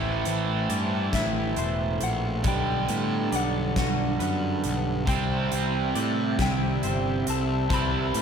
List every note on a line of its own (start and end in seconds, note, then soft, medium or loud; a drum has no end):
0.00 0.22 A1 medium
0.00 2.01 A2 medium
0.00 2.43 A2 medium
0.00 2.43 E3 medium
0.00 2.42 A3 medium
0.00 2.44 A3 medium
0.00 2.42 E4 medium
0.00 0.69 C5 medium
0.00 2.42 C5 medium
0.00 1.14 E5 medium
0.25 0.66 A1 medium
0.25 2.45 E3 medium
0.25 closed hi-hat medium
0.69 1.10 G2 medium
0.69 1.99 C4 medium
0.69 1.56 D5 medium
0.69 closed hi-hat medium
1.13 1.53 A1 medium
1.13 2.45 E4 medium
1.13 2.05 E5 loud
1.13 kick medium
1.13 snare medium
1.13 closed hi-hat medium
1.56 1.97 E1 medium
1.56 2.45 A3 medium
1.56 2.44 C5 medium
1.56 closed hi-hat soft
2.00 2.42 A#1 medium
2.00 2.45 C4 medium
2.00 2.49 F#5 medium
2.00 closed hi-hat medium
2.43 2.85 B1 medium
2.43 5.04 G2 medium
2.43 4.64 B2 medium
2.43 5.05 D3 medium
2.43 5.07 G3 medium
2.43 5.06 B3 medium
2.43 5.06 D4 medium
2.43 5.05 A4 medium
2.43 3.32 B4 medium
2.43 kick medium
2.43 closed hi-hat medium
2.48 3.37 G5 medium
2.89 3.29 A2 medium
2.89 5.51 G3 medium
2.89 closed hi-hat soft
3.32 3.73 B1 medium
3.32 4.63 D4 soft
3.32 4.19 D5 medium
3.32 3.78 F#5 medium
3.32 closed hi-hat soft
3.76 4.16 B1 medium
3.76 5.08 F#4 medium
3.76 5.05 F#5 loud
3.76 kick medium
3.76 snare medium
3.76 closed hi-hat medium
4.19 4.60 F#2 medium
4.19 5.08 B3 soft
4.19 5.07 B4 medium
4.19 closed hi-hat medium
4.64 5.05 B1 medium
4.64 5.08 D4 medium
4.64 closed hi-hat medium
5.06 5.48 C2 medium
5.06 7.67 C3 medium
5.06 7.27 C3 medium
5.06 7.68 G3 medium
5.06 7.72 C4 medium
5.06 8.22 C4 medium
5.06 8.22 G4 soft
5.06 5.95 C5 medium
5.06 8.22 E5 medium
5.06 6.36 G5 loud
5.06 kick medium
5.06 closed hi-hat medium
5.52 5.92 C2 medium
5.52 8.13 E3 medium
5.52 closed hi-hat medium
5.95 6.36 A2 medium
5.95 7.26 C4 medium
5.95 6.83 D5 medium
5.95 closed hi-hat soft
6.39 6.79 C2 medium
6.39 8.22 E4 medium
6.39 7.24 G5 loud
6.39 kick medium
6.39 snare medium
6.39 closed hi-hat medium
6.83 7.23 G1 medium
6.83 8.22 G3 soft
6.83 7.70 C5 medium
6.83 closed hi-hat soft
7.27 7.68 C2 medium
7.27 8.22 C4 medium
7.27 7.75 A5 medium
7.27 closed hi-hat medium
7.69 8.11 C2 medium
7.69 8.22 C3 medium
7.69 8.22 G3 medium
7.69 8.22 C4 medium
7.69 8.22 C5 medium
7.69 kick medium
7.69 closed hi-hat medium
7.74 8.22 B5 loud
8.13 8.22 A2 medium
8.13 8.22 E3 medium
8.13 closed hi-hat medium